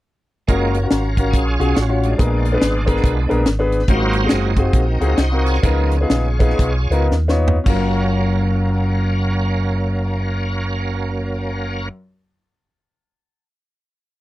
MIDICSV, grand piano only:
0, 0, Header, 1, 2, 480
1, 0, Start_track
1, 0, Key_signature, 6, "major"
1, 0, Tempo, 425532
1, 541, Time_signature, 4, 2, 24, 8
1, 5341, Tempo, 447427
1, 6301, Tempo, 481541
1, 7261, Tempo, 532387
1, 8221, Tempo, 568720
1, 13750, End_track
2, 0, Start_track
2, 0, Title_t, "Grand piano"
2, 0, Program_c, 0, 0
2, 555, Note_on_c, 0, 61, 58
2, 555, Note_on_c, 0, 65, 52
2, 568, Note_on_c, 0, 70, 65
2, 569, Note_on_c, 0, 66, 56
2, 842, Note_off_c, 0, 61, 0
2, 842, Note_off_c, 0, 65, 0
2, 849, Note_off_c, 0, 66, 0
2, 849, Note_off_c, 0, 70, 0
2, 932, Note_on_c, 0, 61, 50
2, 940, Note_on_c, 0, 65, 51
2, 940, Note_on_c, 0, 66, 51
2, 952, Note_on_c, 0, 70, 60
2, 1170, Note_off_c, 0, 61, 0
2, 1174, Note_off_c, 0, 65, 0
2, 1174, Note_off_c, 0, 66, 0
2, 1180, Note_off_c, 0, 70, 0
2, 1329, Note_on_c, 0, 61, 54
2, 1334, Note_on_c, 0, 65, 50
2, 1340, Note_on_c, 0, 66, 57
2, 1345, Note_on_c, 0, 70, 63
2, 1606, Note_off_c, 0, 61, 0
2, 1609, Note_off_c, 0, 65, 0
2, 1612, Note_off_c, 0, 66, 0
2, 1614, Note_off_c, 0, 70, 0
2, 1794, Note_on_c, 0, 65, 59
2, 1795, Note_on_c, 0, 61, 65
2, 1798, Note_on_c, 0, 66, 59
2, 1808, Note_on_c, 0, 68, 73
2, 1981, Note_off_c, 0, 61, 0
2, 1981, Note_off_c, 0, 65, 0
2, 1983, Note_off_c, 0, 66, 0
2, 1988, Note_off_c, 0, 68, 0
2, 2119, Note_on_c, 0, 61, 63
2, 2126, Note_on_c, 0, 65, 60
2, 2137, Note_on_c, 0, 66, 60
2, 2137, Note_on_c, 0, 73, 66
2, 2363, Note_off_c, 0, 61, 0
2, 2367, Note_off_c, 0, 65, 0
2, 2372, Note_off_c, 0, 66, 0
2, 2372, Note_off_c, 0, 73, 0
2, 2457, Note_on_c, 0, 62, 52
2, 2458, Note_on_c, 0, 59, 60
2, 2464, Note_on_c, 0, 46, 52
2, 2466, Note_on_c, 0, 68, 59
2, 2473, Note_on_c, 0, 70, 64
2, 2752, Note_off_c, 0, 59, 0
2, 2752, Note_off_c, 0, 62, 0
2, 2756, Note_off_c, 0, 68, 0
2, 2760, Note_off_c, 0, 70, 0
2, 2844, Note_on_c, 0, 59, 70
2, 2854, Note_on_c, 0, 62, 59
2, 2863, Note_on_c, 0, 71, 75
2, 2865, Note_on_c, 0, 68, 61
2, 3085, Note_off_c, 0, 59, 0
2, 3090, Note_off_c, 0, 62, 0
2, 3094, Note_off_c, 0, 71, 0
2, 3095, Note_off_c, 0, 68, 0
2, 3189, Note_off_c, 0, 46, 0
2, 3225, Note_on_c, 0, 59, 76
2, 3225, Note_on_c, 0, 62, 63
2, 3235, Note_on_c, 0, 68, 66
2, 3244, Note_on_c, 0, 70, 77
2, 3512, Note_off_c, 0, 59, 0
2, 3512, Note_off_c, 0, 62, 0
2, 3517, Note_off_c, 0, 68, 0
2, 3522, Note_off_c, 0, 70, 0
2, 3708, Note_on_c, 0, 62, 69
2, 3710, Note_on_c, 0, 59, 78
2, 3713, Note_on_c, 0, 68, 68
2, 3718, Note_on_c, 0, 70, 83
2, 3895, Note_off_c, 0, 62, 0
2, 3896, Note_off_c, 0, 59, 0
2, 3898, Note_off_c, 0, 68, 0
2, 3900, Note_off_c, 0, 70, 0
2, 4049, Note_on_c, 0, 59, 75
2, 4052, Note_on_c, 0, 62, 68
2, 4056, Note_on_c, 0, 68, 68
2, 4060, Note_on_c, 0, 71, 82
2, 4285, Note_off_c, 0, 59, 0
2, 4286, Note_off_c, 0, 62, 0
2, 4289, Note_off_c, 0, 68, 0
2, 4290, Note_off_c, 0, 71, 0
2, 4384, Note_on_c, 0, 60, 62
2, 4392, Note_on_c, 0, 66, 57
2, 4394, Note_on_c, 0, 44, 55
2, 4394, Note_on_c, 0, 65, 58
2, 4403, Note_on_c, 0, 70, 69
2, 4673, Note_off_c, 0, 60, 0
2, 4677, Note_off_c, 0, 66, 0
2, 4678, Note_off_c, 0, 65, 0
2, 4682, Note_off_c, 0, 70, 0
2, 4774, Note_on_c, 0, 60, 57
2, 4782, Note_on_c, 0, 65, 50
2, 4787, Note_on_c, 0, 66, 53
2, 4797, Note_on_c, 0, 68, 63
2, 5009, Note_off_c, 0, 60, 0
2, 5013, Note_off_c, 0, 65, 0
2, 5016, Note_off_c, 0, 66, 0
2, 5021, Note_off_c, 0, 68, 0
2, 5116, Note_off_c, 0, 44, 0
2, 5153, Note_on_c, 0, 60, 63
2, 5159, Note_on_c, 0, 65, 58
2, 5164, Note_on_c, 0, 66, 53
2, 5169, Note_on_c, 0, 68, 64
2, 5438, Note_off_c, 0, 60, 0
2, 5441, Note_off_c, 0, 65, 0
2, 5443, Note_off_c, 0, 66, 0
2, 5445, Note_off_c, 0, 68, 0
2, 5626, Note_on_c, 0, 60, 64
2, 5632, Note_on_c, 0, 65, 61
2, 5633, Note_on_c, 0, 66, 59
2, 5638, Note_on_c, 0, 68, 72
2, 5813, Note_off_c, 0, 60, 0
2, 5816, Note_off_c, 0, 65, 0
2, 5816, Note_off_c, 0, 66, 0
2, 5819, Note_off_c, 0, 68, 0
2, 5969, Note_on_c, 0, 65, 57
2, 5970, Note_on_c, 0, 60, 60
2, 5977, Note_on_c, 0, 66, 59
2, 5984, Note_on_c, 0, 70, 70
2, 6210, Note_off_c, 0, 60, 0
2, 6210, Note_off_c, 0, 65, 0
2, 6213, Note_off_c, 0, 66, 0
2, 6217, Note_off_c, 0, 70, 0
2, 6296, Note_on_c, 0, 59, 62
2, 6305, Note_on_c, 0, 63, 55
2, 6307, Note_on_c, 0, 49, 53
2, 6310, Note_on_c, 0, 65, 59
2, 6316, Note_on_c, 0, 70, 68
2, 6584, Note_off_c, 0, 59, 0
2, 6588, Note_off_c, 0, 63, 0
2, 6591, Note_off_c, 0, 65, 0
2, 6594, Note_off_c, 0, 70, 0
2, 6679, Note_on_c, 0, 59, 60
2, 6686, Note_on_c, 0, 63, 60
2, 6691, Note_on_c, 0, 65, 58
2, 6692, Note_on_c, 0, 68, 70
2, 6919, Note_off_c, 0, 59, 0
2, 6923, Note_off_c, 0, 63, 0
2, 6925, Note_off_c, 0, 65, 0
2, 6926, Note_off_c, 0, 68, 0
2, 7031, Note_off_c, 0, 49, 0
2, 7062, Note_on_c, 0, 59, 72
2, 7067, Note_on_c, 0, 63, 66
2, 7072, Note_on_c, 0, 65, 65
2, 7077, Note_on_c, 0, 68, 72
2, 7352, Note_off_c, 0, 59, 0
2, 7354, Note_off_c, 0, 63, 0
2, 7356, Note_off_c, 0, 65, 0
2, 7358, Note_off_c, 0, 68, 0
2, 7547, Note_on_c, 0, 59, 74
2, 7555, Note_on_c, 0, 63, 65
2, 7561, Note_on_c, 0, 65, 72
2, 7563, Note_on_c, 0, 70, 77
2, 7729, Note_off_c, 0, 59, 0
2, 7734, Note_off_c, 0, 63, 0
2, 7737, Note_off_c, 0, 65, 0
2, 7737, Note_off_c, 0, 70, 0
2, 7882, Note_on_c, 0, 59, 74
2, 7882, Note_on_c, 0, 63, 65
2, 7891, Note_on_c, 0, 65, 67
2, 7900, Note_on_c, 0, 73, 75
2, 8127, Note_off_c, 0, 59, 0
2, 8127, Note_off_c, 0, 63, 0
2, 8131, Note_off_c, 0, 65, 0
2, 8136, Note_off_c, 0, 73, 0
2, 8204, Note_on_c, 0, 61, 68
2, 8222, Note_on_c, 0, 65, 64
2, 8231, Note_on_c, 0, 42, 70
2, 8237, Note_on_c, 0, 66, 57
2, 8254, Note_on_c, 0, 70, 75
2, 11756, Note_off_c, 0, 61, 0
2, 11772, Note_off_c, 0, 65, 0
2, 11782, Note_off_c, 0, 42, 0
2, 11788, Note_off_c, 0, 66, 0
2, 11804, Note_off_c, 0, 70, 0
2, 13750, End_track
0, 0, End_of_file